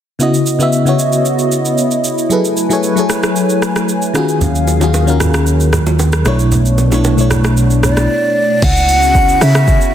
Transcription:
0.19 fm electric piano C#3 B3 E4 F#4 D#5, analog synth pad C#3 B3 E4 F#4 D#5, shaker
0.34 shaker
0.46 shaker
0.59 fm electric piano C#3 B3 E4 F#4 E5, shaker
0.73 shaker
0.85 fm electric piano C#3 B3 E4 F#4 C#5, shaker
0.99 shaker
1.13 shaker
1.25 shaker
1.39 shaker
1.52 shaker
1.65 shaker
1.78 shaker
1.91 shaker
2.04 shaker
2.18 shaker
2.29 fm electric piano F#3 E4 G#4 A4 B4, analog synth pad F#3 A3 B4 G#5, shaker
2.45 shaker
2.57 shaker
2.69 fm electric piano F#3 E4 G#4 A4 C#5, shaker
2.83 shaker
2.96 fm electric piano F#3 E4 G#4 A4 C#5, shaker
3.10 cross-stick, shaker
3.23 cross-stick, shaker
3.36 shaker
3.50 shaker
3.62 cross-stick, shaker
3.76 cross-stick, shaker
3.89 shaker
4.02 shaker
4.14 fm electric piano D#3 C#4 F4 F#4 G#4, analog synth pad D#3 F#3 C#4 F5, cross-stick, shaker
4.29 shaker
4.41 fingered electric bass D#2, low conga, shaker
4.55 shaker
4.67 high bongo, low bongo, shaker
4.80 fm electric piano D#3 C#4 F4 F#4 G#4, low bongo, shaker
4.94 high bongo, shaker
5.06 fm electric piano D#3 C#4 F4 F#4 A#4, shaker
5.20 cross-stick, low bongo, low conga, shaker
5.34 cross-stick, shaker
5.47 shaker
5.60 shaker
5.73 cross-stick, low conga, shaker
5.87 low bongo, shaker
5.99 high bongo, shaker
6.13 cross-stick, shaker
6.24 fingered electric bass B1, fm electric piano B2 A3 D4 E4 C#5, analog synth pad A3 B3 D4, cross-stick, high bongo, shaker
6.39 shaker
6.52 low conga, shaker
6.66 shaker
6.78 high bongo, low bongo, shaker
6.91 fm electric piano B2 A3 D4 E4 C#5, low bongo, shaker
7.04 high bongo, shaker
7.17 fm electric piano B2 A3 D4 E4 C#5, shaker
7.31 cross-stick, low bongo, low conga, shaker
7.44 cross-stick, shaker
7.57 shaker
7.71 shaker
7.83 flute D5, cross-stick, low conga, shaker
7.97 cross-stick, low bongo, shaker
8.62 log drum bass C#2, analog synth pad C#3 B3 C#4 E4 F#4, flute F#5, kick, crash, shaker
8.76 shaker
8.89 open hi-hat, shaker
9.02 shaker
9.15 kick, shaker
9.29 shaker
9.41 log drum bass C#3, flute E5, cross-stick, open hi-hat, shaker
9.55 cross-stick, shaker
9.68 kick, shaker
9.81 shaker

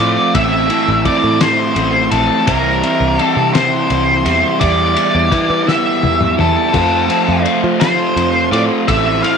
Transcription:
Already playing: overdriven electric guitar F3, lead electric guitar D5
0.00 picked electric bass A2, overdriven electric guitar A3 C4 F4
0.35 picked electric bass A1, overdriven electric guitar A2 E3 A3 C4 E4, lead electric guitar E5, kick, ride
0.70 overdriven electric guitar A3 C4 E4, ride
0.88 picked electric bass A1
1.05 overdriven electric guitar E3 A3 C4 E4, lead electric guitar D5, kick, ride
1.24 picked electric bass A2
1.40 overdriven electric guitar A2 E3 A3 C4 E4, lead electric guitar C5, snare, ride
1.76 picked electric bass A1, ride
2.11 picked electric bass A#1, overdriven electric guitar A3 C4 E4, lead electric guitar A4, ride
2.47 picked electric bass C2, overdriven electric guitar C3 E3 G3 C4 E4, lead electric guitar A#4, kick, ride
2.83 overdriven electric guitar G3 C4 E4, ride
3.00 picked electric bass C2
3.19 overdriven electric guitar E3 G3 C4 E4, lead electric guitar A4, ride
3.37 picked electric bass C3
3.54 overdriven electric guitar C3 E3 G3 C4 E4, lead electric guitar C5, snare, ride
3.90 picked electric bass C2, ride
4.24 picked electric bass E2, overdriven electric guitar G3 C4 E4, ride
4.60 picked electric bass E2, overdriven electric guitar E3 G3 B3 E4, lead electric guitar D5, kick, ride
4.95 overdriven electric guitar G3 B3 E4, ride
5.15 picked electric bass E2
5.31 overdriven electric guitar E3 G3 B3 E4, kick, ride
5.50 picked electric bass E3
5.66 overdriven electric guitar E3 G3 B3 E4, lead electric guitar E5, snare
6.03 picked electric bass E2, high tom
6.21 mid tom
6.37 picked electric bass E2, overdriven electric guitar G3 B3 E4, lead electric guitar A4, mid tom
6.73 picked electric bass F2, overdriven electric guitar F3 A3 C4 F4, tonewheel organ A4 C5 F5 C6, kick, crash
7.08 overdriven electric guitar A3 C4 F4, ride
7.28 picked electric bass F2
7.44 overdriven electric guitar F3 A3 C4 F4, ride
7.64 picked electric bass F3
7.79 overdriven electric guitar F3 A3 C4 F4, lead electric guitar C5, snare, ride
8.16 picked electric bass F2, ride
8.51 picked electric bass A2, overdriven electric guitar A3 C4 F4, lead electric guitar D5, ride
8.87 picked electric bass A1, overdriven electric guitar A2 E3 A3 C4 E4, lead electric guitar E5, kick, ride
9.23 overdriven electric guitar A3 C4 E4, lead electric guitar F5, ride

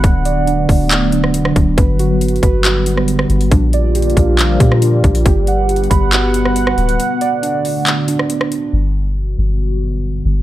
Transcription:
Already playing: analog synth pad D3 B3 F#5
0.04 808-style bass D1, analog synth pad F#3 A3, synth keys B3, kick, closed hi-hat
0.25 synth keys D5, closed hi-hat
0.47 synth keys D4, closed hi-hat
0.69 808-style bass D1, kick, open hi-hat
0.91 clap, closed hi-hat
1.12 synth keys D4, closed hi-hat
1.24 cross-stick
1.34 synth keys B3, closed hi-hat
1.45 cross-stick
1.56 808-style bass D1, kick, closed hi-hat
1.77 808-style bass G1, analog synth pad G3, synth keys B4, kick, closed hi-hat
1.99 synth keys F#4, closed hi-hat
2.21 closed hi-hat
2.28 closed hi-hat
2.36 closed hi-hat
2.43 808-style bass G1, synth keys B4, kick, closed hi-hat
2.65 synth keys F#4, clap, closed hi-hat
2.86 synth keys B3, closed hi-hat
2.97 cross-stick
3.08 closed hi-hat
3.19 cross-stick
3.30 808-style bass G1, closed hi-hat
3.41 closed hi-hat
3.51 808-style bass A#1, analog synth pad F3 A#3 F4, synth keys D4, kick, closed hi-hat
3.73 synth keys D5, closed hi-hat
3.95 synth keys G4, closed hi-hat
4.02 closed hi-hat
4.10 closed hi-hat
4.17 808-style bass A#1, kick, closed hi-hat
4.39 clap, closed hi-hat
4.60 808-style bass A#2, synth keys G4, kick, closed hi-hat
4.72 cross-stick
4.82 synth keys D4, closed hi-hat
5.04 808-style bass A#1, kick, closed hi-hat
5.15 closed hi-hat
5.26 808-style bass G1, analog synth pad B3 F#5, synth keys G4, kick, closed hi-hat
5.47 synth keys F#5, closed hi-hat
5.69 closed hi-hat
5.76 closed hi-hat
5.84 closed hi-hat
5.90 808-style bass G1, synth keys B5, kick, closed hi-hat
6.12 synth keys F#4, clap, closed hi-hat
6.34 synth keys B3, closed hi-hat
6.45 cross-stick
6.56 closed hi-hat
6.67 cross-stick
6.78 808-style bass D1, closed hi-hat
6.89 closed hi-hat
6.99 analog synth pad D3 A3, synth keys B3, closed hi-hat
7.21 synth keys D5, closed hi-hat
7.42 synth keys D4, closed hi-hat
7.65 open hi-hat
7.87 clap, closed hi-hat
8.08 synth keys D4, closed hi-hat
8.19 cross-stick
8.30 synth keys B3, closed hi-hat
8.41 cross-stick
8.52 closed hi-hat
8.73 808-style bass G1, analog synth pad D3 F#3 G3 B3 F#4
9.39 808-style bass G1
10.25 808-style bass G1

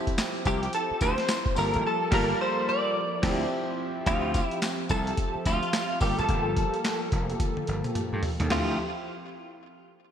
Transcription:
Already playing: grand piano F3 C4 E4 G4, analog synth pad F3 C4 E4 G4
0.07 kick, closed hi-hat
0.18 snare, clap, closed hi-hat, tambourine
0.45 slap bass C2, analog polysynth C4 E4 F4 G4, clean electric guitar G4, kick, closed hi-hat, tambourine
0.63 closed hi-hat
0.73 clean electric guitar A4, closed hi-hat
0.91 muted slap bass stroke
1.01 slap bass D2, clean electric guitar C5, kick, closed hi-hat, tambourine
1.18 snare, closed hi-hat
1.28 snare, clap, closed hi-hat, tambourine
1.46 kick
1.56 slap bass G1, grand piano G3 A#3 F4 A4, analog polysynth A#3 F4 G4 A4, analog synth pad A#3 A4, clean electric guitar A#4, open hi-hat, tambourine
1.74 slap bass G#1, closed hi-hat
1.87 clean electric guitar A4
2.11 slap bass G1, grand piano G3 A#3 F4 A4, analog polysynth A#3 F4 G4 A4, clean electric guitar A#4, kick, snare, crash
2.41 clean electric guitar C5
2.69 clean electric guitar D5
2.96 analog synth pad C4 E4 G4
3.22 slap bass D2, grand piano F3 C4 E4 G4, analog polysynth C4 E4 F4 G4, kick, snare, crash
4.06 slap bass D2, grand piano F3 C4 G4 E5, analog synth pad F3 C4 G4 E5, analog polysynth C4 E4 F4 G4, clean electric guitar F4, kick, closed hi-hat, tambourine
4.34 kick, closed hi-hat, tambourine
4.44 clean electric guitar E4
4.51 closed hi-hat
4.62 snare, clap, closed hi-hat, tambourine
4.89 slap bass C2, analog polysynth C4 E4 F4 G4, clean electric guitar A4, kick, closed hi-hat, tambourine
5.07 closed hi-hat
5.17 kick, closed hi-hat
5.35 muted slap bass stroke
5.45 slap bass D2, clean electric guitar F4, kick, closed hi-hat, tambourine
5.63 closed hi-hat
5.73 snare, clap, closed hi-hat, tambourine
6.00 slap bass G1, grand piano G3 A#3 F4 A4, analog polysynth A#3 F4 G4 A4, analog synth pad A#3 A4, clean electric guitar G4, kick, open hi-hat, tambourine
6.19 slap bass G#1, clean electric guitar A4, closed hi-hat
6.29 slap bass G1, analog polysynth A#3 F4 G4 A4, kick, closed hi-hat
6.57 analog polysynth A#3 F4 G4 A4, kick, closed hi-hat
6.74 closed hi-hat
6.84 snare, clap, closed hi-hat
7.12 slap bass F1, kick, closed hi-hat
7.29 analog polysynth A#3 F4 G4 A4, closed hi-hat
7.40 kick, closed hi-hat, high tom
7.57 muted slap bass stroke, high tom
7.67 slap bass G1, closed hi-hat
7.84 analog polysynth A#3 F4 G4 A4, closed hi-hat, mid tom
7.95 closed hi-hat, mid tom
8.12 slap bass G2, analog polysynth A#3 F4 G4 A4
8.23 floor tom, open hi-hat
8.40 slap bass D#2, analog polysynth A#3 F4 G4 A4, closed hi-hat, floor tom
8.50 slap bass D2, analog synth pad F3 C4 E4 G4, grand piano F3 C4 E4 G4, analog polysynth C4 E4 F4 G4, clean electric guitar F4, snare, floor tom, crash

